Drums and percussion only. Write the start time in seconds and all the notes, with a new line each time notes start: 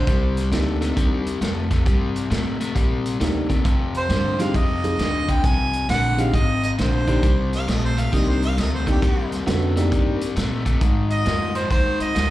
0.07 kick, closed hi-hat
0.37 snare, closed hi-hat
0.52 snare, closed hi-hat
0.82 snare, closed hi-hat
0.97 kick, closed hi-hat
1.26 closed hi-hat
1.42 snare, closed hi-hat
1.71 kick, snare, closed hi-hat
1.86 kick, closed hi-hat
2.16 closed hi-hat
2.31 snare, closed hi-hat
2.61 closed hi-hat
2.76 kick, snare, closed hi-hat
3.06 closed hi-hat
3.21 snare, closed hi-hat
3.50 kick, closed hi-hat
3.65 kick, closed hi-hat
3.94 closed hi-hat
4.10 snare, closed hi-hat
4.39 snare, closed hi-hat
4.54 kick, snare, closed hi-hat
4.84 closed hi-hat
4.99 snare, closed hi-hat
5.28 kick, closed hi-hat
5.44 kick, closed hi-hat
5.73 closed hi-hat
5.89 snare, closed hi-hat
6.18 closed hi-hat
6.34 kick, closed hi-hat
6.63 closed hi-hat
6.78 snare, closed hi-hat
7.07 kick, closed hi-hat
7.23 kick, closed hi-hat
7.53 snare, closed hi-hat
7.68 snare, closed hi-hat
7.98 closed hi-hat
8.13 kick, snare, closed hi-hat
8.42 closed hi-hat
8.58 snare, closed hi-hat
8.87 kick, closed hi-hat
9.02 kick, closed hi-hat
9.32 snare, closed hi-hat
9.47 snare, closed hi-hat
9.77 snare, closed hi-hat
9.92 kick, closed hi-hat
10.21 closed hi-hat
10.36 snare, closed hi-hat
10.66 kick, closed hi-hat
10.81 kick, closed hi-hat
11.10 closed hi-hat
11.26 snare, closed hi-hat
11.55 snare, closed hi-hat
11.70 kick, closed hi-hat
12.00 closed hi-hat
12.16 snare, closed hi-hat